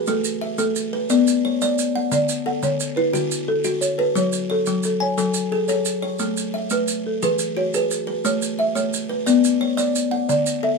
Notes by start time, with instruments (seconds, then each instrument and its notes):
Already playing: kalimba B4
0.07 kalimba A3, marimba A4, maracas
0.24 maracas
0.41 kalimba E5
0.58 kalimba A3, marimba A4, maracas
0.76 maracas
0.93 kalimba B4
1.10 kalimba B3 D5, maracas
1.27 maracas
1.45 kalimba C#5
1.61 kalimba D5, maracas
1.79 maracas
1.96 kalimba F#5
2.12 kalimba D3, marimba D5, maracas
2.29 maracas
2.46 kalimba A4, marimba F#5
2.63 kalimba D3, marimba C#5, maracas
2.80 maracas
2.96 kalimba E4, marimba B4
3.13 kalimba D3 F#4, maracas
3.31 maracas
3.48 marimba A4
3.64 kalimba F#4, maracas
3.81 marimba C#5, maracas
3.98 kalimba A4, marimba B4
4.15 kalimba F#3, marimba C#5, maracas
4.32 maracas
4.50 marimba A4, kalimba C#5
4.66 kalimba F#3, maracas
4.83 marimba A4, maracas
5.00 marimba C#5, kalimba G#5
5.18 kalimba F#3 A4, marimba A4, maracas
5.34 maracas
5.52 kalimba G#4, marimba A4
5.68 kalimba A4, marimba C#5, maracas
5.85 maracas
6.02 kalimba C#5
6.19 kalimba A3, maracas
6.37 maracas
6.54 kalimba E5
6.70 kalimba A3, marimba B4, maracas
6.88 maracas
7.06 marimba A4
7.22 kalimba E3 G#4, marimba B4, maracas
7.39 maracas
7.57 kalimba F#4, marimba C#5
7.74 kalimba G#4, marimba B4, maracas
7.91 maracas
8.07 kalimba B4
8.25 kalimba A3, marimba C#5, maracas
8.42 maracas
8.59 kalimba E5, marimba E5
8.75 kalimba A3, marimba C#5, maracas
8.93 maracas
9.09 kalimba B4
9.26 kalimba B3 D5, maracas
9.44 maracas
9.61 kalimba C#5
9.77 kalimba D5, maracas
9.95 maracas
10.11 kalimba F#5
10.29 kalimba D3, marimba D5, maracas
10.46 maracas
10.63 kalimba A4, marimba E5